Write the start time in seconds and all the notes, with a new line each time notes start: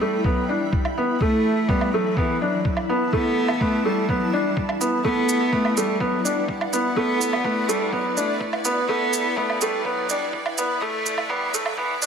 Already playing: E4 E5 G5 B5
0.00 G3 A3
0.24 F#3 B3, kick
0.48 G3 D4
0.73 kick
0.85 low woodblock
0.98 B3
1.21 A3, kick
1.25 A5
1.68 G3 B3, kick
1.81 low woodblock
1.92 F#3 A3
2.16 E3 B3, kick
2.40 F#3 D4
2.65 kick
2.77 low woodblock
2.89 B3
3.13 A3 B3, kick
3.48 low woodblock
3.60 A3 B3, kick
3.85 G3 A3
4.09 F#3 B3, kick
4.33 G3 D4
4.57 kick
4.69 low woodblock
4.81 B3 B4, shaker
5.04 A3 B3 D5, kick
5.15 F#5
5.29 shaker
5.52 A3 B3, kick
5.65 low woodblock
5.77 G3 A3, shaker
6.00 F#3 B3, kick
6.25 G3 D4, shaker
6.48 kick
6.61 low woodblock
6.73 B3, shaker
6.96 A3 B3, kick
7.21 shaker
7.33 low woodblock
7.44 A3 B3, kick
7.68 G3 A3, shaker
7.93 F#3 B3, kick
8.16 A3 D4, shaker
8.41 kick
8.53 low woodblock
8.65 B3, shaker
8.88 A3 B3, kick
9.11 E5, shaker
9.36 A3 B3, kick
9.50 low woodblock
9.61 G3 A3, shaker
9.85 F#3 B3, kick
10.09 G3 D4, shaker
10.33 kick
10.46 low woodblock
10.58 B3, shaker
10.81 A3, kick
11.06 shaker
11.18 low woodblock
11.29 G3 B3, kick
11.54 F#3 A3, shaker
11.66 low woodblock
11.77 E3 B3, kick
12.02 F#3 D4, shaker